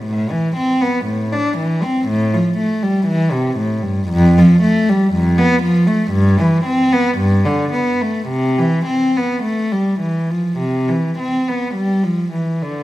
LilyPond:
\new Staff \with { instrumentName = "Cello" } { \clef bass \time 4/4 \key g \mixolydian \tempo 4 = 57 a,16 e16 c'16 b16 a,16 d'16 e16 c'16 a,16 f16 a16 g16 e16 c16 a,16 g,16 | \key c \major f,16 f16 a16 g16 f,16 b16 f16 a16 g,16 e16 c'16 b16 g,16 d16 b16 a16 | c16 e16 c'16 b16 a16 g16 e16 f16 c16 e16 c'16 b16 g16 f16 e16 d16 | }